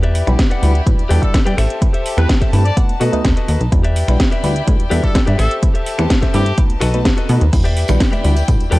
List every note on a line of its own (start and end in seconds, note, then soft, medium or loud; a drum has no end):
0.00 0.23 E2 loud
0.00 1.56 E4 medium
0.00 1.56 G4 medium
0.00 0.27 G4 loud
0.00 0.27 B4 loud
0.00 1.56 D5 medium
0.00 0.27 D5 loud
0.00 closed hi-hat soft
0.04 0.28 E5 loud
0.15 open hi-hat loud
0.27 0.36 B1 medium
0.27 0.36 G3 loud
0.27 0.36 D4 medium
0.27 0.36 E4 medium
0.27 0.37 F#4 medium
0.27 0.37 B4 loud
0.27 finger snap medium
0.27 closed hi-hat soft
0.39 kick loud
0.39 snare loud
0.39 closed hi-hat medium
0.50 0.80 G4 medium
0.50 0.80 B4 medium
0.50 0.81 D5 medium
0.50 0.81 F#5 loud
0.50 closed hi-hat soft
0.62 0.81 D2 medium
0.62 0.72 G3 medium
0.62 0.72 D4 medium
0.62 0.72 E4 medium
0.62 0.72 F#4 medium
0.62 0.73 B4 loud
0.62 open hi-hat medium
0.75 closed hi-hat soft
0.86 0.96 A2 medium
0.86 1.02 G3 medium
0.86 1.02 D4 medium
0.86 1.02 E4 medium
0.86 1.02 F#4 medium
0.86 1.02 B4 loud
0.86 kick loud
0.86 closed hi-hat medium
0.99 1.08 E2 soft
0.99 closed hi-hat soft
1.09 1.20 E2 loud
1.09 1.19 G3 medium
1.09 1.19 D4 medium
1.09 1.20 E4 medium
1.09 1.20 F#4 medium
1.09 1.28 G4 loud
1.09 1.20 A4 loud
1.09 1.28 B4 loud
1.09 1.28 D5 loud
1.09 1.29 G5 loud
1.09 open hi-hat loud
1.22 1.37 G3 loud
1.22 1.37 D4 medium
1.22 1.37 E4 medium
1.22 1.37 F#4 medium
1.22 1.38 A4 medium
1.22 1.37 D5 loud
1.22 kick medium
1.22 closed hi-hat soft
1.34 kick loud
1.34 snare loud
1.34 closed hi-hat medium
1.45 1.55 G2 medium
1.45 1.56 G4 medium
1.45 1.57 B4 medium
1.45 1.58 D5 medium
1.45 1.58 G5 loud
1.45 closed hi-hat soft
1.57 1.67 A1 medium
1.57 1.86 G4 loud
1.57 2.76 G4 medium
1.57 1.86 A4 medium
1.57 1.87 C5 medium
1.57 2.76 C5 medium
1.57 1.87 E5 loud
1.57 3.70 A5 loud
1.57 finger snap medium
1.57 open hi-hat medium
1.70 closed hi-hat soft
1.81 1.91 A3 loud
1.81 1.91 C4 medium
1.81 1.91 E4 medium
1.81 1.91 G4 medium
1.81 1.91 B4 loud
1.81 kick loud
1.81 closed hi-hat medium
1.93 2.17 G4 loud
1.93 2.18 A4 loud
1.93 2.18 C5 loud
1.93 2.18 E5 loud
1.93 closed hi-hat soft
2.06 open hi-hat loud
2.17 2.26 E2 medium
2.17 2.27 A3 medium
2.17 2.27 C4 medium
2.17 2.27 E4 medium
2.17 2.27 G4 medium
2.17 2.34 B4 medium
2.17 2.27 B4 loud
2.17 finger snap medium
2.17 closed hi-hat soft
2.29 kick loud
2.29 snare loud
2.29 closed hi-hat medium
2.41 2.71 G4 medium
2.41 2.71 A4 medium
2.41 2.71 C5 medium
2.41 2.52 E5 loud
2.41 kick medium
2.41 closed hi-hat soft
2.53 2.71 G2 medium
2.53 2.63 A3 loud
2.53 2.63 C4 medium
2.53 2.63 E4 medium
2.53 2.63 G4 medium
2.53 2.63 B4 loud
2.53 2.75 A5 medium
2.53 open hi-hat medium
2.65 2.82 D5 medium
2.65 closed hi-hat soft
2.77 2.92 A3 medium
2.77 2.92 B3 medium
2.77 2.92 D#4 medium
2.77 3.71 D#4 medium
2.77 2.92 F#4 medium
2.77 3.71 B4 medium
2.77 2.92 B4 loud
2.77 3.21 F#5 medium
2.77 kick loud
2.77 closed hi-hat medium
2.89 2.98 B2 soft
2.89 closed hi-hat soft
3.00 3.10 B2 loud
3.00 3.10 A3 medium
3.00 3.10 B3 medium
3.00 3.10 D#4 medium
3.00 3.18 F#4 loud
3.00 3.10 F#4 medium
3.00 3.19 A4 loud
3.00 3.10 A4 loud
3.00 3.19 B4 loud
3.00 3.19 D#5 loud
3.00 open hi-hat loud
3.13 3.22 D#2 soft
3.13 3.28 A3 loud
3.13 3.28 B3 medium
3.13 3.28 D#4 loud
3.13 3.28 F#4 medium
3.13 3.28 D#5 loud
3.13 closed hi-hat soft
3.25 3.34 D#2 medium
3.25 3.36 D#5 medium
3.25 kick loud
3.25 snare loud
3.25 closed hi-hat medium
3.36 3.60 F#4 medium
3.36 3.60 A4 medium
3.36 3.61 B4 medium
3.36 3.61 D#5 loud
3.36 closed hi-hat soft
3.48 3.58 D#2 medium
3.48 open hi-hat medium
3.61 3.69 B1 medium
3.61 closed hi-hat soft
3.72 4.04 E2 loud
3.72 3.82 G3 loud
3.72 3.82 D4 medium
3.72 3.82 E4 medium
3.72 5.37 E4 medium
3.72 3.82 F#4 medium
3.72 3.82 B4 loud
3.72 5.37 D5 medium
3.72 5.37 G5 medium
3.72 kick loud
3.72 closed hi-hat loud
3.83 4.08 G4 loud
3.83 4.08 B4 loud
3.83 4.08 D5 loud
3.83 4.09 E5 loud
3.83 closed hi-hat soft
3.96 open hi-hat loud
4.08 4.17 B1 medium
4.08 4.17 G3 loud
4.08 4.17 D4 medium
4.08 4.17 E4 medium
4.08 4.17 F#4 medium
4.08 4.18 B4 loud
4.08 finger snap medium
4.08 closed hi-hat soft
4.20 kick loud
4.20 snare loud
4.20 closed hi-hat loud
4.31 4.61 G4 medium
4.31 4.61 B4 medium
4.31 4.62 D5 medium
4.31 4.62 E5 loud
4.31 closed hi-hat soft
4.43 4.62 D2 medium
4.43 4.53 G3 medium
4.43 4.53 D4 medium
4.43 4.53 E4 medium
4.43 4.53 F#4 medium
4.43 4.53 B4 loud
4.43 open hi-hat medium
4.56 closed hi-hat soft
4.67 4.77 A2 loud
4.67 4.82 G3 loud
4.67 4.83 D4 medium
4.67 4.83 E4 medium
4.67 4.83 F#4 medium
4.67 4.83 B4 loud
4.67 kick loud
4.67 closed hi-hat medium
4.80 4.89 E2 soft
4.80 closed hi-hat soft
4.90 5.01 E2 loud
4.90 5.00 G3 medium
4.90 5.00 D4 medium
4.90 5.00 E4 medium
4.90 5.01 F#4 medium
4.90 5.09 G4 loud
4.90 5.01 A4 loud
4.90 5.09 B4 loud
4.90 5.09 D5 loud
4.90 5.10 E5 loud
4.90 open hi-hat loud
5.03 5.18 G3 loud
5.03 5.18 D4 medium
5.03 5.18 E4 medium
5.03 5.18 F#4 medium
5.03 5.19 A4 medium
5.03 5.19 D5 loud
5.03 kick medium
5.03 closed hi-hat soft
5.15 kick loud
5.15 snare loud
5.15 closed hi-hat loud
5.26 5.36 G2 medium
5.26 5.37 G4 medium
5.26 5.38 B4 medium
5.26 5.38 D5 medium
5.26 5.38 E5 loud
5.26 closed hi-hat soft
5.38 5.48 A1 medium
5.38 5.67 G4 loud
5.38 6.56 G4 medium
5.38 5.67 A4 medium
5.38 5.55 A4 loud
5.38 6.56 C5 medium
5.38 5.68 C5 medium
5.38 5.68 E5 loud
5.38 7.51 A5 medium
5.38 finger snap medium
5.38 open hi-hat medium
5.51 closed hi-hat soft
5.62 5.72 A3 loud
5.62 5.72 C4 medium
5.62 5.72 E4 medium
5.62 5.72 G4 medium
5.62 5.73 B4 loud
5.62 kick loud
5.62 closed hi-hat loud
5.74 5.98 G4 loud
5.74 5.98 A4 loud
5.74 5.99 C5 loud
5.74 5.99 E5 loud
5.74 closed hi-hat soft
5.86 open hi-hat loud
5.98 6.08 E2 loud
5.98 6.08 A3 loud
5.98 6.08 C4 medium
5.98 6.08 E4 medium
5.98 6.08 G4 medium
5.98 6.08 B4 loud
5.98 finger snap medium
5.98 closed hi-hat soft
6.10 kick loud
6.10 snare loud
6.10 closed hi-hat loud
6.21 6.52 G4 medium
6.21 6.52 A4 medium
6.21 6.52 C5 medium
6.21 6.52 E5 loud
6.21 kick medium
6.21 snare soft
6.21 closed hi-hat soft
6.34 6.52 G2 medium
6.34 6.44 A3 medium
6.34 6.44 C4 medium
6.34 6.44 E4 medium
6.34 6.63 G4 medium
6.34 6.44 G4 medium
6.34 6.44 B4 loud
6.34 open hi-hat medium
6.46 closed hi-hat soft
6.58 6.73 A3 medium
6.58 6.73 B3 medium
6.58 7.52 D#4 medium
6.58 6.73 D#4 medium
6.58 6.73 F#4 medium
6.58 7.52 B4 medium
6.58 6.73 B4 loud
6.58 kick loud
6.58 closed hi-hat loud
6.70 6.79 B1 soft
6.70 closed hi-hat soft
6.81 7.13 B1 loud
6.81 6.99 F#4 loud
6.81 6.99 A4 loud
6.81 7.00 B4 loud
6.81 7.00 D#5 loud
6.81 finger snap medium
6.81 open hi-hat loud
6.94 7.09 A3 medium
6.94 7.09 B3 medium
6.94 7.09 D#4 medium
6.94 7.09 F#4 medium
6.94 7.09 B4 medium
6.94 closed hi-hat soft
7.05 kick loud
7.05 snare loud
7.05 closed hi-hat loud
7.17 7.41 F#4 medium
7.17 7.41 A4 medium
7.17 7.42 B4 medium
7.17 7.42 D#5 loud
7.17 closed hi-hat soft
7.29 7.39 B2 loud
7.29 7.44 A3 medium
7.29 7.44 B3 medium
7.29 7.45 D#4 medium
7.29 7.45 F#4 medium
7.29 7.45 B4 loud
7.29 open hi-hat medium
7.41 7.50 D#2 loud
7.41 closed hi-hat soft
7.52 7.84 E2 loud
7.52 7.62 G3 loud
7.52 7.63 D4 medium
7.52 8.79 E4 medium
7.52 7.63 E4 medium
7.52 7.63 F#4 medium
7.52 7.63 B4 loud
7.52 8.79 D5 medium
7.52 8.79 G5 loud
7.52 kick loud
7.52 closed hi-hat loud
7.52 tambourine medium
7.52 crash medium
7.64 7.89 G4 loud
7.64 7.89 B4 loud
7.64 7.89 D5 loud
7.64 7.89 E5 loud
7.64 closed hi-hat soft
7.64 tambourine soft
7.77 open hi-hat loud
7.88 7.98 B1 medium
7.88 7.98 G3 loud
7.88 7.98 D4 medium
7.88 7.98 E4 medium
7.88 7.98 F#4 medium
7.88 7.99 B4 loud
7.88 finger snap medium
7.88 closed hi-hat soft
7.88 tambourine medium
7.88 low conga medium
8.00 kick loud
8.00 snare loud
8.00 closed hi-hat loud
8.00 tambourine medium
8.12 8.42 G4 medium
8.12 8.42 B4 medium
8.12 8.43 D5 medium
8.12 8.43 E5 loud
8.12 closed hi-hat soft
8.12 tambourine soft
8.12 high conga medium
8.24 8.43 D2 loud
8.24 8.34 G3 loud
8.24 8.34 D4 medium
8.24 8.34 E4 medium
8.24 8.34 F#4 medium
8.24 8.34 B4 loud
8.24 open hi-hat medium
8.36 closed hi-hat soft
8.36 tambourine medium
8.48 8.58 A2 medium
8.48 8.63 G3 loud
8.48 8.64 D4 medium
8.48 8.64 E4 medium
8.48 8.64 F#4 medium
8.48 8.64 B4 loud
8.48 kick loud
8.48 closed hi-hat loud
8.48 tambourine medium
8.60 8.70 E2 soft
8.60 closed hi-hat soft
8.60 tambourine soft
8.71 8.79 E2 loud
8.71 8.79 G3 medium
8.71 8.79 D4 medium
8.71 8.79 E4 medium
8.71 8.79 F#4 medium
8.71 8.79 G4 loud
8.71 8.79 A4 loud
8.71 8.79 B4 loud
8.71 8.79 D5 loud
8.71 8.79 G5 loud
8.71 open hi-hat loud
8.71 high conga medium